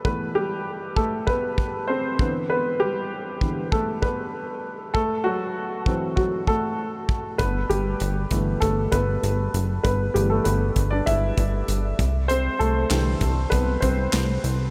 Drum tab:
HH |--------|--------|--------|xxxxxxxx|
CP |--------|--------|--------|--------|
SD |--------|--------|--------|--------|
BD |o--ooo-o|---ooo--|o--ooo-o|o--ooo--|

HH |xxxxxxxx|xxxxxxxx|
CP |--------|--x---x-|
SD |--------|--o---o-|
BD |o--ooo-o|---ooo--|